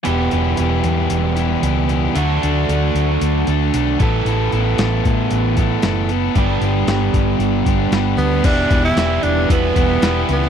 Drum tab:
CC |----------------|----------------|----------------|----------------|
HH |x-x-x-x-x-x-x-x-|x-x-x-x-x-x-x-x-|x-x-x-x-x-x-x-x-|x-x-x-x-x-x-x-x-|
SD |----------------|----------------|----o-------o---|----o-------o---|
BD |----------------|--------------o-|------o---o-----|o-----o---o-----|

CC |x---------------|
HH |x-x-x-x-x-x-x-x-|
SD |----o-------o--o|
BD |o-o-----o-o-----|